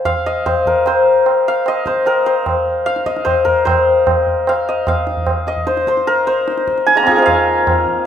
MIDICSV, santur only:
0, 0, Header, 1, 2, 480
1, 0, Start_track
1, 0, Tempo, 400267
1, 65, Time_signature, 3, 2, 24, 8
1, 9668, End_track
2, 0, Start_track
2, 0, Title_t, "Santur"
2, 0, Program_c, 0, 15
2, 0, Note_on_c, 0, 72, 69
2, 63, Note_on_c, 0, 77, 92
2, 316, Note_on_c, 0, 75, 80
2, 546, Note_off_c, 0, 72, 0
2, 551, Note_on_c, 0, 72, 76
2, 803, Note_on_c, 0, 70, 65
2, 1039, Note_off_c, 0, 72, 0
2, 1044, Note_on_c, 0, 72, 71
2, 1770, Note_off_c, 0, 77, 0
2, 1775, Note_on_c, 0, 77, 87
2, 2009, Note_off_c, 0, 75, 0
2, 2014, Note_on_c, 0, 75, 86
2, 2235, Note_off_c, 0, 72, 0
2, 2240, Note_on_c, 0, 72, 71
2, 2474, Note_off_c, 0, 70, 0
2, 2479, Note_on_c, 0, 70, 78
2, 2708, Note_off_c, 0, 72, 0
2, 2713, Note_on_c, 0, 72, 65
2, 3424, Note_off_c, 0, 77, 0
2, 3428, Note_on_c, 0, 77, 89
2, 3666, Note_off_c, 0, 75, 0
2, 3671, Note_on_c, 0, 75, 75
2, 3889, Note_off_c, 0, 72, 0
2, 3893, Note_on_c, 0, 72, 84
2, 4129, Note_off_c, 0, 70, 0
2, 4134, Note_on_c, 0, 70, 72
2, 4374, Note_off_c, 0, 72, 0
2, 4379, Note_on_c, 0, 72, 73
2, 5378, Note_off_c, 0, 77, 0
2, 5382, Note_on_c, 0, 77, 75
2, 5615, Note_off_c, 0, 75, 0
2, 5620, Note_on_c, 0, 75, 70
2, 5848, Note_off_c, 0, 77, 0
2, 5852, Note_on_c, 0, 77, 79
2, 6563, Note_off_c, 0, 75, 0
2, 6568, Note_on_c, 0, 75, 77
2, 6791, Note_off_c, 0, 72, 0
2, 6796, Note_on_c, 0, 72, 77
2, 7046, Note_off_c, 0, 72, 0
2, 7051, Note_on_c, 0, 72, 78
2, 7277, Note_off_c, 0, 70, 0
2, 7282, Note_on_c, 0, 70, 87
2, 7513, Note_off_c, 0, 72, 0
2, 7518, Note_on_c, 0, 72, 79
2, 8232, Note_on_c, 0, 80, 98
2, 8338, Note_on_c, 0, 56, 42
2, 8356, Note_on_c, 0, 82, 93
2, 8381, Note_on_c, 0, 58, 47
2, 8426, Note_on_c, 0, 60, 51
2, 8468, Note_off_c, 0, 80, 0
2, 8469, Note_on_c, 0, 63, 54
2, 8473, Note_on_c, 0, 80, 91
2, 8493, Note_on_c, 0, 65, 50
2, 8515, Note_off_c, 0, 77, 0
2, 8530, Note_on_c, 0, 68, 59
2, 8581, Note_off_c, 0, 70, 0
2, 8586, Note_on_c, 0, 70, 59
2, 8611, Note_off_c, 0, 72, 0
2, 8616, Note_on_c, 0, 72, 57
2, 8655, Note_off_c, 0, 75, 0
2, 8658, Note_off_c, 0, 56, 0
2, 8660, Note_on_c, 0, 75, 64
2, 8702, Note_on_c, 0, 77, 92
2, 9649, Note_off_c, 0, 77, 0
2, 9668, Note_off_c, 0, 58, 0
2, 9668, Note_off_c, 0, 60, 0
2, 9668, Note_off_c, 0, 63, 0
2, 9668, Note_off_c, 0, 65, 0
2, 9668, Note_off_c, 0, 68, 0
2, 9668, Note_off_c, 0, 70, 0
2, 9668, Note_off_c, 0, 72, 0
2, 9668, Note_off_c, 0, 75, 0
2, 9668, Note_off_c, 0, 80, 0
2, 9668, Note_off_c, 0, 82, 0
2, 9668, End_track
0, 0, End_of_file